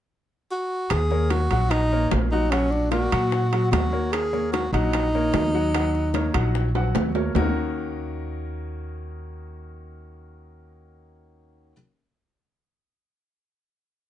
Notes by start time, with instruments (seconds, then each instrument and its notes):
0.51 tenor saxophone F#4
0.90 upright bass D#2, tenor saxophone G#4, high bongo, high timbale
1.10 grand piano A#3 A#4 C#5, high bongo
1.30 tenor saxophone F#4, high bongo, high timbale, low timbale
1.51 upright bass A#1, grand piano F#3 F#4 F#5, high bongo, high timbale
1.70 tenor saxophone D#4, high bongo, high timbale
1.92 grand piano A#3 A#4 C#5, high bongo
2.11 upright bass A#1, high bongo, low bongo, high timbale, low timbale
2.32 grand piano F#3 F#4 F#5, tenor saxophone D#4
2.51 grand piano F#3 F#4 F#5, tenor saxophone C#4, high bongo, high timbale
2.71 tenor saxophone D4, high bongo
2.91 grand piano A#3 A#4 D5, tenor saxophone F#4, high bongo, high timbale, low timbale
3.12 upright bass A#2, grand piano F#3 F#4 F#5, high timbale
3.32 high bongo
3.53 grand piano F#3 F#4 F#5, high bongo, high timbale
3.72 upright bass D#2, tenor saxophone F#4, high bongo, low bongo, high timbale, low timbale
3.92 grand piano A#3 A#4 C#5, high bongo
4.12 tenor saxophone G#4, high bongo, high timbale
4.33 grand piano A#3 A#4 C#5, high bongo
4.52 tenor saxophone F#4, high bongo, high timbale, low timbale
4.73 upright bass A#1, grand piano F#3 F#4 F#5, tenor saxophone D#4, high bongo, high timbale
4.93 high bongo, high timbale
5.14 grand piano A#3 A#4 C#5, high bongo
5.34 upright bass D#2, high bongo, low bongo, high timbale, low timbale
5.54 grand piano F#3 F#4 F#5
5.74 grand piano F#3 F#4 F#5, high bongo, high timbale
5.95 high bongo
6.14 grand piano A#3 A#4 C#5, high bongo, high timbale, low timbale
6.34 upright bass A#1, grand piano F#3 F#4 F#5, high timbale
6.55 high bongo
6.75 grand piano F#3 F#4 F#5, high bongo, high timbale
6.95 upright bass D#2, high bongo, low bongo, low timbale
7.15 grand piano A#3 A#4 C#5, high bongo, low timbale
7.35 upright bass D#2, grand piano D#3 A#3 C#4 D#4 F#4 A#4, low bongo, low timbale